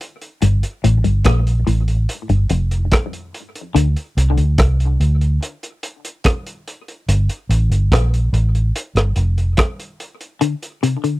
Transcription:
0.01 closed hi-hat
0.21 closed hi-hat
0.42 fingered electric bass G1, clean electric guitar G2, closed hi-hat
0.63 closed hi-hat
0.84 fingered electric bass A1, clean electric guitar A2, closed hi-hat
1.04 fingered electric bass G1, clean electric guitar G2, closed hi-hat
1.24 fingered electric bass A#1, clean electric guitar A#2, kick, cross-stick, closed hi-hat
1.47 closed hi-hat
1.67 fingered electric bass A1, clean electric guitar A2, closed hi-hat
1.88 closed hi-hat
2.09 closed hi-hat
2.29 fingered electric bass G1, clean electric guitar G2, closed hi-hat
2.49 fingered electric bass F1, clean electric guitar F2, closed hi-hat
2.71 closed hi-hat
2.92 kick, cross-stick, closed hi-hat
3.13 closed hi-hat
3.34 closed hi-hat
3.55 closed hi-hat
3.75 fingered electric bass D2, clean electric guitar D3, closed hi-hat
3.96 closed hi-hat
4.17 fingered electric bass C2, closed hi-hat
4.37 fingered electric bass D2, closed hi-hat
4.58 fingered electric bass C2, kick, cross-stick, closed hi-hat
4.80 closed hi-hat
5.00 fingered electric bass D2, closed hi-hat
5.21 closed hi-hat
5.43 closed hi-hat
5.63 closed hi-hat
5.83 closed hi-hat
6.05 closed hi-hat
6.24 kick, cross-stick, closed hi-hat
6.47 closed hi-hat
6.68 closed hi-hat
6.88 closed hi-hat
7.09 fingered electric bass G1, closed hi-hat
7.29 closed hi-hat
7.49 fingered electric bass A1, closed hi-hat
7.70 fingered electric bass G1, closed hi-hat
7.92 fingered electric bass A#1, kick, cross-stick, closed hi-hat
8.14 closed hi-hat
8.33 fingered electric bass A1, closed hi-hat
8.55 closed hi-hat
8.76 closed hi-hat
8.95 fingered electric bass G1, cross-stick, closed hi-hat
9.16 fingered electric bass F1, closed hi-hat
9.38 closed hi-hat
9.57 kick, cross-stick, closed hi-hat
9.80 closed hi-hat
10.00 closed hi-hat
10.21 closed hi-hat
10.41 clean electric guitar D3, closed hi-hat
10.62 closed hi-hat
10.83 clean electric guitar C3, closed hi-hat
11.04 clean electric guitar D3, closed hi-hat

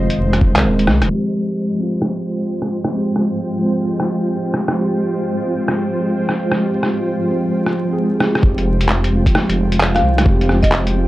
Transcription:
Already playing: synth keys D#3 G#3 C4 G#4, ambient pad G#3 C5 D#5 C6
0.00 synth keys F4
0.10 closed hi-hat
0.18 detuned saw bass F1
0.33 cross-stick, closed hi-hat
0.41 kick
0.52 detuned saw bass C2, synth keys D#3 G#3
0.56 synth keys C4 A#4, clap, closed hi-hat
0.64 detuned saw bass D#1
0.79 closed hi-hat
0.87 detuned saw bass C2, cross-stick
1.02 detuned saw bass D#1, cross-stick, closed hi-hat
1.06 synth keys F3 G#3
1.10 ambient pad G#3 F4 C5 G5, synth keys C4 G4
1.74 synth keys F3 G#3
1.80 synth keys C4 F4
2.02 cross-stick
2.62 cross-stick
2.84 cross-stick
2.89 synth keys F3 G#3
2.94 synth keys C4 G4
3.16 cross-stick
3.58 synth keys F3 G#3
3.63 synth keys C4 F4
4.00 cross-stick
4.54 cross-stick
4.68 cross-stick
4.73 synth keys F3 G#3
4.78 synth keys C4 G4
5.41 synth keys F3 G#3
5.47 synth keys C4 F4
5.68 cross-stick
6.29 cross-stick
6.52 synth keys F3, cross-stick
6.58 synth keys G#3 C4
6.64 synth keys G4
6.83 cross-stick
7.25 synth keys F3 G#3
7.30 synth keys C4 F4
7.66 cross-stick
7.85 synth keys F3 G#3
7.90 synth keys C4 G#4
8.20 cross-stick
8.35 synth keys F3, cross-stick
8.41 detuned saw bass F1, synth keys G#3 C4, ambient pad G#3 F4 C5 G5, kick
8.47 synth keys G4
8.58 closed hi-hat
8.81 closed hi-hat
8.89 clap
9.04 synth keys F3, closed hi-hat
9.10 detuned saw bass F1, synth keys G#3 C4
9.16 synth keys F4
9.26 kick, closed hi-hat
9.35 cross-stick
9.49 detuned saw bass F1, closed hi-hat
9.72 closed hi-hat
9.80 clap
9.95 marimba F5, cross-stick, closed hi-hat
10.03 detuned saw bass C2
10.18 synth keys F3, cross-stick, closed hi-hat
10.25 detuned saw bass F1, synth keys G#3 C4, kick
10.30 synth keys G4
10.41 closed hi-hat
10.49 cross-stick
10.63 marimba D#5, kick, closed hi-hat
10.72 clap
10.87 synth keys F3, closed hi-hat
10.93 detuned saw bass F1, synth keys G#3 C4
10.98 synth keys F4

